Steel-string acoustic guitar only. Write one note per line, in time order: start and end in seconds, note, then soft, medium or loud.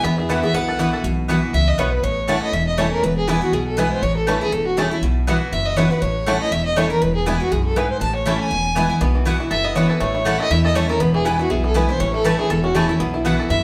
0.04 0.52 E2 medium
0.29 0.43 E3 medium
0.29 0.43 B3 loud
0.29 0.43 E4 medium
0.29 0.42 F#4 medium
0.43 0.55 E4 medium
0.43 0.54 F#4 medium
0.54 1.02 B2 medium
0.79 1.03 E3 medium
0.79 1.03 B3 medium
0.79 1.03 E4 medium
0.79 1.04 F#4 medium
1.04 1.52 B2 medium
1.29 1.53 E3 medium
1.29 1.53 B3 medium
1.29 1.53 E4 loud
1.29 1.54 F#4 loud
1.54 1.78 C#3 medium
1.79 2.02 B2 medium
2.04 2.51 A2 medium
2.28 2.52 E3 medium
2.28 2.52 A3 medium
2.28 2.53 C#4 medium
2.28 2.53 E4 loud
2.53 3.01 E2 medium
2.78 3.02 E3 loud
2.78 3.02 A3 loud
2.78 3.02 C#4 medium
2.78 3.03 E4 medium
3.03 3.51 E2 loud
3.28 3.41 E3 medium
3.28 3.42 G#3 loud
3.28 3.42 B3 loud
3.28 3.40 E4 loud
3.42 3.53 B3 medium
3.42 3.52 E4 medium
3.53 4.01 B2 medium
3.77 4.01 E3 medium
3.77 4.02 G#3 medium
3.77 4.02 B3 medium
3.77 4.02 E4 loud
4.03 4.50 A2 medium
4.27 4.41 E3 medium
4.27 4.41 A3 medium
4.27 4.41 C#4 loud
4.27 4.40 E4 loud
4.41 4.53 C#4 medium
4.41 4.52 E4 medium
4.52 5.00 E2 medium
4.77 4.91 E3 medium
4.77 4.91 A3 medium
4.77 4.91 C#4 medium
4.77 4.90 E4 loud
4.91 5.03 C#4 medium
4.91 5.02 E4 medium
5.03 5.50 B2 loud
5.27 5.51 E3 medium
5.27 5.51 B3 medium
5.27 5.52 E4 loud
5.27 5.52 F#4 medium
5.53 6.00 F#2 medium
5.76 5.90 E3 medium
5.76 5.91 B3 medium
5.76 5.91 E4 medium
5.76 5.89 F#4 medium
5.90 6.02 E4 medium
5.90 6.01 F#4 medium
6.02 6.50 A2 medium
6.26 6.50 E3 medium
6.26 6.51 A3 loud
6.26 6.51 C#4 medium
6.26 6.51 E4 loud
6.52 6.99 E2 loud
6.76 6.90 E3 medium
6.76 6.90 A3 medium
6.76 6.90 C#4 medium
6.76 6.89 E4 loud
6.90 7.02 C#4 medium
6.90 7.01 E4 medium
7.02 7.49 E2 loud
7.26 7.40 E3 medium
7.26 7.40 G#3 loud
7.26 7.40 B3 loud
7.26 7.39 E4 loud
7.40 7.52 B3 medium
7.40 7.51 E4 medium
7.52 7.75 F#2 medium
7.76 8.00 G#2 medium
8.01 8.49 A2 loud
8.26 8.50 E3 loud
8.26 8.50 A3 loud
8.26 8.50 C#4 loud
8.26 8.51 E4 loud
8.51 8.99 E2 medium
8.76 8.89 E3 medium
8.76 8.90 G#3 medium
8.76 8.90 B3 loud
8.76 8.88 E4 loud
8.89 9.01 B3 medium
8.89 9.00 E4 medium
9.01 9.49 B2 loud
9.25 9.49 E3 medium
9.25 9.50 B3 medium
9.25 9.50 E4 loud
9.25 9.50 F#4 loud
9.51 9.99 F#2 medium
9.75 9.99 E3 medium
9.75 10.00 B3 loud
9.75 10.00 E4 loud
9.75 10.00 F#4 loud
10.00 10.48 A2 medium
10.25 10.49 E3 medium
10.25 10.50 A3 medium
10.25 10.50 C#4 loud
10.25 10.50 E4 loud
10.51 10.98 E2 medium
10.75 10.89 E3 medium
10.75 10.89 A3 loud
10.75 10.89 C#4 loud
10.75 10.88 E4 loud
10.89 11.01 C#4 medium
10.89 11.00 E4 medium
11.00 11.48 E2 loud
11.25 11.39 E3 medium
11.25 11.39 G#3 loud
11.25 11.39 B3 loud
11.25 11.38 E4 loud
11.39 11.51 B3 medium
11.39 11.50 E4 medium
11.50 11.98 B2 medium
11.74 11.88 E3 medium
11.74 11.88 G#3 loud
11.74 11.89 B3 medium
11.74 11.87 E4 loud
11.89 12.00 B3 medium
11.89 12.00 E4 medium
12.00 12.48 A2 medium
12.24 12.49 E3 loud
12.24 12.49 A3 loud
12.24 12.49 C#4 loud
12.24 12.49 E4 loud
12.50 12.98 E2 loud
12.75 12.88 E3 medium
12.75 12.89 A3 medium
12.75 12.89 C#4 loud
12.75 12.88 E4 medium
12.89 13.00 C#4 medium
12.89 13.00 E4 medium
13.00 13.48 B2 medium
13.25 13.49 E3 medium
13.25 13.49 B3 loud
13.25 13.49 E4 loud
13.25 13.50 F#4 loud
13.50 13.63 F#2 medium